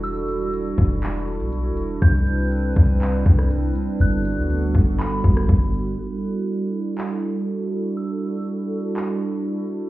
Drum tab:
HH |x-x-x-x-x-xxx-x-|x-x-x-x-x-xxx-x-|x-x-x-o-x-xxx-x-|----------------|
CP |--------x-------|--------x-------|--------x-------|--------x-------|
SD |----------------|-----------r----|-----------r----|----------------|
BD |------o---------|o-----o---o-----|------o---o-o---|----------------|

HH |----------------|
CP |--------x-------|
SD |----------------|
BD |----------------|